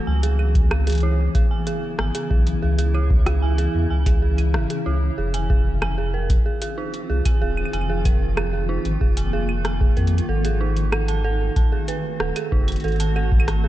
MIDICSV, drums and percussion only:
0, 0, Header, 1, 2, 480
1, 0, Start_track
1, 0, Tempo, 638298
1, 56, Time_signature, 4, 2, 24, 8
1, 10288, End_track
2, 0, Start_track
2, 0, Title_t, "Drums"
2, 174, Note_on_c, 9, 42, 98
2, 250, Note_off_c, 9, 42, 0
2, 294, Note_on_c, 9, 75, 36
2, 369, Note_off_c, 9, 75, 0
2, 414, Note_on_c, 9, 42, 54
2, 415, Note_on_c, 9, 36, 107
2, 490, Note_off_c, 9, 36, 0
2, 490, Note_off_c, 9, 42, 0
2, 534, Note_on_c, 9, 37, 123
2, 534, Note_on_c, 9, 75, 78
2, 610, Note_off_c, 9, 37, 0
2, 610, Note_off_c, 9, 75, 0
2, 655, Note_on_c, 9, 42, 92
2, 674, Note_off_c, 9, 42, 0
2, 674, Note_on_c, 9, 42, 78
2, 694, Note_off_c, 9, 42, 0
2, 694, Note_on_c, 9, 42, 60
2, 715, Note_off_c, 9, 42, 0
2, 715, Note_on_c, 9, 42, 52
2, 735, Note_off_c, 9, 42, 0
2, 735, Note_on_c, 9, 42, 42
2, 755, Note_off_c, 9, 42, 0
2, 755, Note_on_c, 9, 42, 34
2, 830, Note_off_c, 9, 42, 0
2, 1014, Note_on_c, 9, 42, 57
2, 1015, Note_on_c, 9, 36, 126
2, 1089, Note_off_c, 9, 42, 0
2, 1090, Note_off_c, 9, 36, 0
2, 1254, Note_on_c, 9, 42, 82
2, 1329, Note_off_c, 9, 42, 0
2, 1494, Note_on_c, 9, 37, 127
2, 1569, Note_off_c, 9, 37, 0
2, 1615, Note_on_c, 9, 42, 96
2, 1690, Note_off_c, 9, 42, 0
2, 1735, Note_on_c, 9, 36, 106
2, 1810, Note_off_c, 9, 36, 0
2, 1855, Note_on_c, 9, 42, 55
2, 1930, Note_off_c, 9, 42, 0
2, 2094, Note_on_c, 9, 42, 92
2, 2170, Note_off_c, 9, 42, 0
2, 2214, Note_on_c, 9, 75, 36
2, 2290, Note_off_c, 9, 75, 0
2, 2335, Note_on_c, 9, 36, 125
2, 2410, Note_off_c, 9, 36, 0
2, 2454, Note_on_c, 9, 37, 126
2, 2454, Note_on_c, 9, 42, 53
2, 2454, Note_on_c, 9, 75, 77
2, 2530, Note_off_c, 9, 37, 0
2, 2530, Note_off_c, 9, 42, 0
2, 2530, Note_off_c, 9, 75, 0
2, 2694, Note_on_c, 9, 42, 81
2, 2770, Note_off_c, 9, 42, 0
2, 3055, Note_on_c, 9, 36, 116
2, 3055, Note_on_c, 9, 42, 87
2, 3130, Note_off_c, 9, 36, 0
2, 3130, Note_off_c, 9, 42, 0
2, 3295, Note_on_c, 9, 42, 52
2, 3295, Note_on_c, 9, 75, 50
2, 3370, Note_off_c, 9, 42, 0
2, 3370, Note_off_c, 9, 75, 0
2, 3415, Note_on_c, 9, 37, 127
2, 3490, Note_off_c, 9, 37, 0
2, 3535, Note_on_c, 9, 42, 95
2, 3610, Note_off_c, 9, 42, 0
2, 4015, Note_on_c, 9, 42, 88
2, 4091, Note_off_c, 9, 42, 0
2, 4135, Note_on_c, 9, 36, 109
2, 4211, Note_off_c, 9, 36, 0
2, 4376, Note_on_c, 9, 37, 126
2, 4376, Note_on_c, 9, 75, 80
2, 4451, Note_off_c, 9, 37, 0
2, 4451, Note_off_c, 9, 75, 0
2, 4736, Note_on_c, 9, 36, 120
2, 4736, Note_on_c, 9, 42, 73
2, 4811, Note_off_c, 9, 36, 0
2, 4812, Note_off_c, 9, 42, 0
2, 4976, Note_on_c, 9, 42, 85
2, 5051, Note_off_c, 9, 42, 0
2, 5216, Note_on_c, 9, 42, 53
2, 5291, Note_off_c, 9, 42, 0
2, 5455, Note_on_c, 9, 42, 93
2, 5455, Note_on_c, 9, 75, 53
2, 5456, Note_on_c, 9, 36, 114
2, 5531, Note_off_c, 9, 36, 0
2, 5531, Note_off_c, 9, 42, 0
2, 5531, Note_off_c, 9, 75, 0
2, 5696, Note_on_c, 9, 75, 58
2, 5756, Note_off_c, 9, 75, 0
2, 5756, Note_on_c, 9, 75, 50
2, 5816, Note_off_c, 9, 75, 0
2, 5816, Note_on_c, 9, 42, 51
2, 5816, Note_on_c, 9, 75, 40
2, 5875, Note_off_c, 9, 75, 0
2, 5875, Note_on_c, 9, 75, 32
2, 5891, Note_off_c, 9, 42, 0
2, 5951, Note_off_c, 9, 75, 0
2, 6056, Note_on_c, 9, 36, 112
2, 6056, Note_on_c, 9, 42, 78
2, 6056, Note_on_c, 9, 75, 39
2, 6131, Note_off_c, 9, 36, 0
2, 6131, Note_off_c, 9, 42, 0
2, 6131, Note_off_c, 9, 75, 0
2, 6296, Note_on_c, 9, 37, 118
2, 6296, Note_on_c, 9, 75, 79
2, 6371, Note_off_c, 9, 37, 0
2, 6371, Note_off_c, 9, 75, 0
2, 6656, Note_on_c, 9, 42, 47
2, 6731, Note_off_c, 9, 42, 0
2, 6776, Note_on_c, 9, 36, 97
2, 6851, Note_off_c, 9, 36, 0
2, 6896, Note_on_c, 9, 42, 86
2, 6971, Note_off_c, 9, 42, 0
2, 7136, Note_on_c, 9, 75, 54
2, 7211, Note_off_c, 9, 75, 0
2, 7255, Note_on_c, 9, 37, 123
2, 7255, Note_on_c, 9, 42, 52
2, 7330, Note_off_c, 9, 37, 0
2, 7330, Note_off_c, 9, 42, 0
2, 7376, Note_on_c, 9, 36, 117
2, 7451, Note_off_c, 9, 36, 0
2, 7495, Note_on_c, 9, 42, 35
2, 7570, Note_off_c, 9, 42, 0
2, 7575, Note_on_c, 9, 42, 48
2, 7650, Note_off_c, 9, 42, 0
2, 7656, Note_on_c, 9, 42, 59
2, 7731, Note_off_c, 9, 42, 0
2, 7856, Note_on_c, 9, 42, 92
2, 7931, Note_off_c, 9, 42, 0
2, 8095, Note_on_c, 9, 42, 51
2, 8170, Note_off_c, 9, 42, 0
2, 8215, Note_on_c, 9, 37, 121
2, 8215, Note_on_c, 9, 75, 85
2, 8290, Note_off_c, 9, 37, 0
2, 8290, Note_off_c, 9, 75, 0
2, 8335, Note_on_c, 9, 42, 91
2, 8410, Note_off_c, 9, 42, 0
2, 8695, Note_on_c, 9, 36, 115
2, 8695, Note_on_c, 9, 42, 54
2, 8770, Note_off_c, 9, 42, 0
2, 8771, Note_off_c, 9, 36, 0
2, 8935, Note_on_c, 9, 42, 77
2, 9010, Note_off_c, 9, 42, 0
2, 9174, Note_on_c, 9, 37, 118
2, 9250, Note_off_c, 9, 37, 0
2, 9295, Note_on_c, 9, 42, 93
2, 9295, Note_on_c, 9, 75, 58
2, 9370, Note_off_c, 9, 42, 0
2, 9370, Note_off_c, 9, 75, 0
2, 9415, Note_on_c, 9, 36, 98
2, 9491, Note_off_c, 9, 36, 0
2, 9535, Note_on_c, 9, 42, 50
2, 9535, Note_on_c, 9, 75, 63
2, 9565, Note_off_c, 9, 42, 0
2, 9565, Note_on_c, 9, 42, 40
2, 9595, Note_off_c, 9, 42, 0
2, 9595, Note_on_c, 9, 42, 34
2, 9610, Note_off_c, 9, 75, 0
2, 9625, Note_off_c, 9, 42, 0
2, 9625, Note_on_c, 9, 42, 28
2, 9656, Note_off_c, 9, 42, 0
2, 9656, Note_on_c, 9, 42, 22
2, 9686, Note_off_c, 9, 42, 0
2, 9686, Note_on_c, 9, 42, 19
2, 9715, Note_off_c, 9, 42, 0
2, 9715, Note_on_c, 9, 42, 15
2, 9746, Note_off_c, 9, 42, 0
2, 9746, Note_on_c, 9, 42, 13
2, 9775, Note_off_c, 9, 42, 0
2, 9775, Note_on_c, 9, 42, 97
2, 9850, Note_off_c, 9, 42, 0
2, 9896, Note_on_c, 9, 75, 41
2, 9971, Note_off_c, 9, 75, 0
2, 10016, Note_on_c, 9, 36, 114
2, 10075, Note_on_c, 9, 75, 86
2, 10091, Note_off_c, 9, 36, 0
2, 10136, Note_on_c, 9, 37, 116
2, 10136, Note_on_c, 9, 42, 55
2, 10150, Note_off_c, 9, 75, 0
2, 10211, Note_off_c, 9, 37, 0
2, 10211, Note_off_c, 9, 42, 0
2, 10288, End_track
0, 0, End_of_file